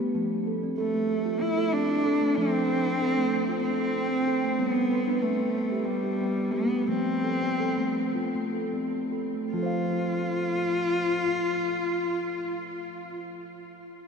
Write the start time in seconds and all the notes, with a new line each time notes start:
Already playing: G3
0.00 A3
0.15 F3 A3
0.47 A4
0.63 C4
0.78 A3 A4
0.94 A3
1.25 F4
1.41 A3 E4
1.57 A4
1.73 C4 D4
2.06 A4
2.22 A3
2.35 F3 A3 C4
2.70 A4
2.86 C4
3.02 A4
3.17 A3
3.49 F4
3.63 A3 C4
3.81 A4
3.96 C4
4.27 A4
4.44 A3
4.58 G3 B3 C4
4.69 B3
4.91 B4
5.07 D4
5.22 A3 B4
5.39 B3
5.72 G4
5.86 G3 B3
6.04 G4
6.21 B3
6.52 B3 G4
6.71 A3
6.87 F3 A3 C4
7.23 A4
7.42 C4
7.60 A4
7.77 A3
8.15 F4
8.35 A3
8.54 A4
8.73 C4
9.12 A4
9.34 A3
9.52 F3 F4
9.58 A4
9.63 C5 F5